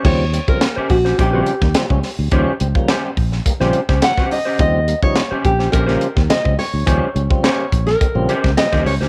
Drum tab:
CC |x---------------|----------------|----------------|----------------|
HH |--x-x-o-x-x-x-o-|x-x-x-o-x-x-x-o-|x-x-x-x-x-x-x-o-|x-x-x-x-x-x-x-o-|
SD |----o--o---oo-o-|----o--o-o-ooo--|----o--o-o-oo-o-|----o--o---ooo-o|
BD |o--o--o-o--o-o--|o--o--o-o--o-o--|o--o--o-o--o-o--|o--o--o-o--o-o--|